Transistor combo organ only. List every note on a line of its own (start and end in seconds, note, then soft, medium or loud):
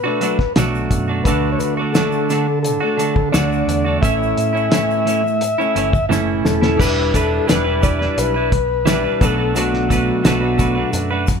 0.00 0.53 B4 medium
1.24 1.50 B4 medium
1.52 1.60 C#5 medium
1.59 1.75 B4 medium
1.92 2.59 A4 medium
2.63 3.29 A4 medium
3.32 3.98 D5 loud
4.02 6.06 E5 loud
6.45 6.80 A4 medium
6.80 7.15 B4 loud
7.15 7.47 A4 medium
7.49 7.85 B4 medium
7.83 8.19 D5 medium
8.19 9.25 B4 loud
9.24 9.55 A4 medium
9.57 10.91 F#4 medium